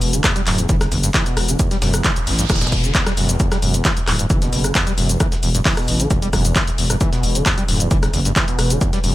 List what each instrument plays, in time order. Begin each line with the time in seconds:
Already playing: acid bass B2
0.01 fm bass E1, open hi-hat, shaker
0.13 acid bass D3, closed hi-hat, shaker
0.24 acid bass E2, kick, cross-stick, snare, clap, closed hi-hat, shaker
0.36 acid bass G3, closed hi-hat, shaker
0.47 fm bass D1, acid bass F#2, clap, open hi-hat, shaker
0.58 acid bass E2, closed hi-hat, shaker
0.69 fm bass F#1, acid bass E3, kick, closed hi-hat, shaker
0.81 acid bass E1, cross-stick, snare, closed hi-hat, shaker
0.92 fm bass F#1, acid bass E2, snare, open hi-hat, shaker
1.04 acid bass G2, closed hi-hat, shaker
1.14 acid bass E3, kick, snare, clap, closed hi-hat, shaker
1.26 acid bass B2, closed hi-hat, shaker
1.37 fm bass E1, cross-stick, open hi-hat, shaker
1.49 acid bass D3, closed hi-hat, shaker
1.59 acid bass E2, kick, closed hi-hat, noise sweep, shaker
1.71 acid bass G3, snare, closed hi-hat, shaker
1.82 fm bass E1, acid bass F#2, snare, open hi-hat, shaker
1.94 acid bass E2, cross-stick, closed hi-hat, shaker
2.04 acid bass E3, kick, snare, clap, closed hi-hat, shaker
2.16 acid bass E1, closed hi-hat, shaker
2.27 fm bass A1, acid bass E2, open hi-hat, shaker
2.39 acid bass G2, closed hi-hat, shaker
2.50 fm bass D1, acid bass E3, kick, cross-stick, snare, closed hi-hat, shaker
2.56 snare, shaker
2.61 acid bass B2, snare, closed hi-hat, shaker
2.67 snare, shaker
2.72 fm bass E1, kick, open hi-hat, shaker
2.84 acid bass D3, closed hi-hat, shaker
2.95 acid bass E2, kick, clap, closed hi-hat, shaker
3.07 acid bass G3, cross-stick, snare, closed hi-hat, shaker
3.17 fm bass E1, acid bass F#2, open hi-hat, shaker
3.29 acid bass E2, closed hi-hat, shaker
3.40 acid bass E2, kick, closed hi-hat, shaker
3.52 acid bass G3, cross-stick, snare, closed hi-hat, shaker
3.62 fm bass E1, acid bass F#2, open hi-hat, shaker
3.74 acid bass E2, closed hi-hat, shaker
3.85 acid bass E3, kick, snare, clap, closed hi-hat, shaker
3.97 acid bass E1, closed hi-hat, shaker
4.07 fm bass D1, acid bass E2, cross-stick, clap, open hi-hat, shaker
4.19 acid bass G2, closed hi-hat, shaker
4.30 fm bass F#1, acid bass E3, kick, closed hi-hat, shaker
4.42 acid bass B2, snare, closed hi-hat, shaker
4.53 fm bass F#1, snare, open hi-hat, shaker
4.64 acid bass D3, cross-stick, closed hi-hat, shaker
4.75 acid bass E2, kick, snare, clap, closed hi-hat, shaker
4.87 acid bass G3, closed hi-hat, shaker
4.98 fm bass E1, acid bass F#2, open hi-hat, shaker
5.09 acid bass E2, closed hi-hat, shaker
5.20 acid bass E3, kick, cross-stick, closed hi-hat, shaker
5.32 acid bass E1, snare, closed hi-hat, shaker
5.43 fm bass E1, acid bass E2, open hi-hat, shaker
5.55 acid bass G2, closed hi-hat, shaker
5.65 acid bass E3, kick, snare, clap, closed hi-hat, open hi-hat, shaker
5.77 acid bass B2, cross-stick, closed hi-hat, shaker
5.88 fm bass A1, open hi-hat, shaker
6.00 acid bass D3, closed hi-hat, shaker
6.10 fm bass E1, acid bass E2, kick, closed hi-hat, shaker
6.22 acid bass G3, closed hi-hat, shaker
6.33 fm bass E1, acid bass F#2, kick, cross-stick, open hi-hat, shaker
6.45 acid bass E2, closed hi-hat, shaker
6.56 acid bass E3, kick, snare, clap, closed hi-hat, shaker
6.67 acid bass E1, closed hi-hat, shaker
6.78 fm bass E1, acid bass E2, open hi-hat, shaker
6.90 acid bass G2, cross-stick, closed hi-hat, shaker
7.01 acid bass E3, kick, closed hi-hat, shaker
7.13 acid bass B2, snare, closed hi-hat, shaker
7.23 fm bass E1, open hi-hat, shaker
7.35 acid bass D3, closed hi-hat, shaker
7.46 acid bass E2, kick, cross-stick, snare, clap, closed hi-hat, shaker
7.58 acid bass G3, closed hi-hat, shaker
7.68 fm bass D1, acid bass F#2, open hi-hat, shaker
7.80 acid bass E2, closed hi-hat, shaker
7.91 fm bass F#1, acid bass E3, kick, closed hi-hat, shaker
8.03 acid bass E1, cross-stick, snare, closed hi-hat, shaker
8.14 fm bass F#1, acid bass E2, snare, open hi-hat, shaker
8.25 acid bass G2, closed hi-hat, shaker
8.36 acid bass E3, kick, snare, clap, closed hi-hat, shaker
8.48 acid bass B2, closed hi-hat, shaker
8.59 fm bass E1, cross-stick, open hi-hat, shaker
8.70 acid bass D3, closed hi-hat, shaker
8.81 acid bass E2, kick, closed hi-hat, shaker
8.93 acid bass G3, snare, closed hi-hat, shaker
9.04 fm bass E1, acid bass F#2, open hi-hat, shaker